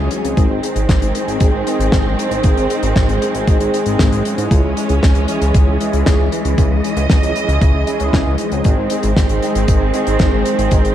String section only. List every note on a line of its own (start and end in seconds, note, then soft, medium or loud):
0.00 0.33 E3 medium
0.00 0.35 F#3 medium
0.00 0.33 C#4 medium
0.37 4.47 D#3 medium
0.37 8.61 G#3 medium
0.37 4.47 C4 medium
4.51 8.61 E3 medium
4.51 6.56 C#4 medium
6.58 8.63 D#5 medium
8.65 10.95 D#3 medium
8.65 10.95 G#3 medium
8.65 10.95 C4 medium